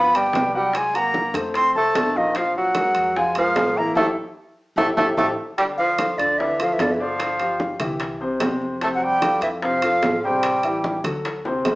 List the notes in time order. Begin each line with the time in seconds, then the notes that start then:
Already playing: G1 F3 B3 F4 F5 B5
0.14 G3 B3 B4 D5 G5, high conga, high timbale
0.33 C2 B3 B4 D5, high bongo, low bongo, high conga, high timbale, low timbale
0.54 F#3 G3 F#4 F#5 G5, high conga
0.73 G#5, high bongo, high conga, high timbale
0.78 G#3
0.94 F#3 A#3 F#4 F#5 A#5, high bongo, high conga, high timbale
1.14 high bongo, high conga, low timbale
1.34 F2 A3 A4 C5, high conga, high timbale
1.54 C4 C6, high bongo, high conga, high timbale
1.75 C2 A3 A4 C5 A5, high bongo, high conga
1.95 A#1, high bongo, low bongo, high conga, high timbale, low timbale
2.15 D#3 F3 F4 D#5 F5, high bongo
2.35 F3 F4 F5, high bongo, high conga, high timbale
2.55 F#3 F#5, high conga
2.75 G#3 G#4 A#4, high bongo, high conga, high timbale, low timbale
2.95 F2, high conga, high timbale
3.15 F3 G#3 F4 F5 G#5, high bongo, high conga
3.35 F3 G#3 G#4 A#4 F5, high conga, high timbale
3.55 A1 G#3 G#4 A#4, high bongo, low bongo, high conga, high timbale, low timbale
3.76 E3 A#3 E4 E5 A#5, high conga
3.95 A1 A3 E4 G4 A4 A5, low bongo, high conga, high timbale
4.76 A1 A3 E4 G4 A4 A5, low bongo, high conga, high timbale
4.96 A1 A3 E4 G4 A4 A5, low bongo, high conga, high timbale
5.17 A1 A3 E4 G4 A4 A5, low bongo, high conga, high timbale
5.58 D3 G3 D4 D5 G5, high bongo, high conga, high timbale
5.78 F3 F5, high conga
5.98 F3 F4 A4, high bongo, high conga, high timbale, low timbale
6.18 D2 D3 D5, high conga, high timbale
6.38 D3 E3 D4 D5 E5, high bongo, high conga
6.59 F3 F4 A4, high conga, high timbale
6.64 F3 F5
6.73 E3 E5
6.78 G1 D3 D5, high bongo, low bongo, high conga, high timbale, low timbale
6.91 E3 E5
7.00 D3 F3 D4 D5 F5, high conga
7.20 high bongo, high conga, high timbale
7.40 F3 F4 G4, high bongo, high conga, high timbale
7.60 high bongo, high conga, low timbale
7.80 C2 E3 E4 G4, high conga, low conga, high timbale
8.00 high bongo, high timbale
8.21 C3 C4 C5, high bongo, high conga
8.40 F2 C3 C4 C5, high bongo, low bongo, high conga, high timbale, low timbale
8.61 high bongo
8.81 C3 A3 C4 C5 A5, high bongo, high conga, high timbale
8.95 F#3 F#5
9.03 G3 G5, high conga
9.22 F3 F4 A4, high bongo, high conga, high timbale, low timbale
9.41 F2 E3 E5, high conga, high timbale
9.62 C3 F3 C4 C5 F5, high bongo, high conga
9.82 F3 F4 A4, high conga, high timbale
10.02 A1, high bongo, low bongo, high conga, high timbale, low timbale
10.23 C3 G3 C4 C5 G5, high conga
10.43 high bongo, high conga, high timbale
10.63 E3 E4 G4, high bongo, high conga, high timbale
10.84 high bongo, high conga, low timbale
11.04 D2 F#3 F#4 A4, high conga, low conga, high timbale
11.25 high bongo, high conga, high timbale
11.45 C3 C4 C5, high bongo, high conga
11.65 G1 C3 C4 C5, low bongo, high conga, high timbale, low timbale